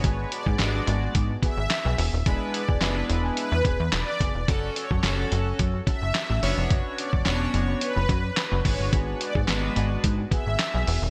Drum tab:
HH |x-x-x-x-x-x-x-o-|x-x-x-x-x-x-x-x-|x-x-x-x-x-x-x-o-|x-x-x-x-x-x-x-o-|
CP |----x-------x---|----x-------x---|----x-------x---|----x-------x---|
SD |----o-------o---|----o-------o---|----o-------o---|----o-------o---|
BD |o--o----o-o-----|o--o------o---o-|o--o----o-o-----|o--o------o---o-|

HH |x-x-x-x-x-x-x-o-|
CP |----x-------x---|
SD |----o-------o---|
BD |o--o----o-o-----|